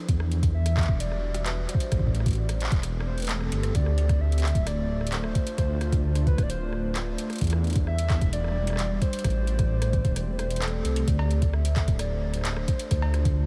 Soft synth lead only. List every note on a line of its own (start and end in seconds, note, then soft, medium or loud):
0.54 1.02 E5 loud
1.00 1.47 D5 loud
1.46 1.70 B4 medium
1.69 2.15 C5 medium
3.06 3.24 C5 medium
3.22 3.31 B4 medium
3.29 3.76 A4 medium
3.75 4.22 D5 loud
4.21 4.68 E5 loud
4.67 5.14 D5 loud
5.12 5.58 C5 loud
5.58 6.01 C5 medium
6.27 6.44 B4 loud
6.43 6.51 D5 medium
6.50 6.96 C5 loud
7.87 8.34 E5 loud
8.33 9.01 D5 loud
9.02 10.35 C5 loud
10.39 10.63 C5 medium
10.62 11.09 A4 medium
11.08 11.55 D5 loud
11.54 11.99 E5 loud
12.00 12.47 D5 loud
12.45 12.91 C5 medium
12.91 13.34 C5 medium